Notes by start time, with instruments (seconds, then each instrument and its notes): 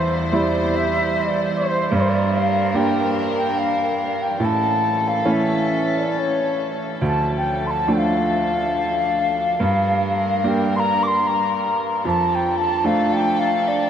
Already playing: upright piano E2, string section E2 G3 E4 C5, flute C5
0.32 upright piano G3 C4 E4, flute D5
0.75 flute E5
1.16 flute D5
1.56 flute C5
1.92 upright piano G2, string section D4 A#4, flute D5
2.00 flute C5
2.09 flute D5
2.35 flute F5
2.74 upright piano G3 A#3 D4, flute G5
3.36 flute G5
3.58 flute F5
4.22 flute G5
4.39 upright piano A2, string section E3 C#4 A4
4.45 flute A5
5.08 flute F5
5.25 upright piano E3 A3 C#4
5.31 flute E5
5.98 flute D5
6.18 flute C#5
7.01 upright piano D2, string section F3 D4 A4
7.06 flute A5
7.37 flute G5
7.66 flute C6
7.70 flute A5
7.88 upright piano F3 A3 D4
7.92 flute G5
7.97 flute F5
9.60 upright piano G2, string section G3 A#4
10.44 upright piano G3 A#3 D4, flute G5
10.76 flute A#5 C6
11.03 flute D6
11.07 flute C6
11.27 flute A#5
12.04 upright piano F2, string section F3 D4 A4, flute A5
12.35 flute G5
12.59 flute A5
12.84 upright piano F3 A3 D4, flute F5
13.13 flute G5
13.39 flute F5
13.67 flute D5